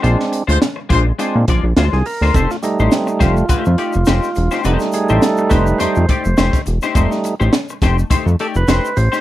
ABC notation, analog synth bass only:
X:1
M:4/4
L:1/16
Q:"Swing 16ths" 1/4=104
K:Fmix
V:1 name="Analog synth bass" clef=bass
B,,, z2 D,, z2 B,,,2 z B,, B,,, B,,, D,, C,, z D,, | F,,, z2 A,,, z2 F,,,2 F,, F,, z F,,, F,,, z =E,,, z | F,,, z2 A,,, z2 F,,,2 F,, F,, z F,,, F,,, z =E,,, z | F,,, z2 A,,, z2 F,,,2 F,, F,, z F,,, F,,, z A,,, z |]